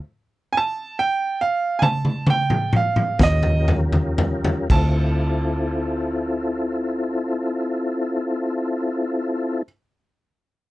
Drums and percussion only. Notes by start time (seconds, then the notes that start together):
1.82 mid tom
2.05 mid tom
2.27 mid tom
2.50 mid tom
2.73 mid tom
2.96 mid tom
3.19 kick, snare, mid tom
3.43 floor tom
3.68 floor tom
3.93 floor tom
4.18 floor tom
4.45 floor tom
4.70 kick, crash